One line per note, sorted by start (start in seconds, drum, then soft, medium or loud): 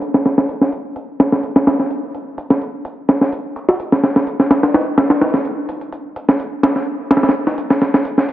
0.02 closed hi-hat medium
0.14 snare soft
0.26 snare soft
0.26 closed hi-hat medium
0.38 snare medium
0.49 closed hi-hat medium
0.61 snare soft
0.72 closed hi-hat medium
0.96 closed hi-hat medium
1.20 snare medium
1.20 closed hi-hat medium
1.32 snare medium
1.43 closed hi-hat medium
1.56 snare medium
1.67 snare loud
1.67 closed hi-hat medium
1.79 snare soft
1.91 closed hi-hat medium
2.14 closed hi-hat medium
2.38 closed hi-hat medium
2.50 snare soft
2.61 closed hi-hat medium
2.85 closed hi-hat medium
3.09 snare soft
3.09 closed hi-hat medium
3.21 snare soft
3.33 closed hi-hat medium
3.56 closed hi-hat medium
3.69 snare soft
3.80 closed hi-hat medium
3.92 snare soft
4.03 snare soft
4.03 closed hi-hat medium
4.16 snare medium
4.27 closed hi-hat medium
4.40 snare soft
4.51 snare medium
4.51 closed hi-hat medium
4.63 snare loud
4.63 closed hi-hat medium
4.74 snare loud
4.74 closed hi-hat medium
4.98 snare loud
4.98 closed hi-hat medium
5.10 snare loud
5.10 closed hi-hat medium
5.21 snare loud
5.21 closed hi-hat medium
5.34 snare medium
5.45 closed hi-hat medium
5.69 closed hi-hat medium
5.81 closed hi-hat soft
5.92 closed hi-hat medium
6.16 closed hi-hat medium
6.29 snare soft
6.40 closed hi-hat medium
6.63 snare loud
6.63 closed hi-hat medium
6.76 snare soft
7.11 snare medium
7.11 closed hi-hat medium
7.17 snare medium
7.17 closed hi-hat medium
7.23 snare medium
7.23 closed hi-hat medium
7.29 snare medium
7.29 closed hi-hat medium
7.34 closed hi-hat medium
7.47 snare soft
7.58 closed hi-hat medium
7.70 snare soft
7.81 snare soft
7.81 closed hi-hat medium
7.94 snare medium
8.05 closed hi-hat medium
8.18 snare soft
8.29 closed hi-hat medium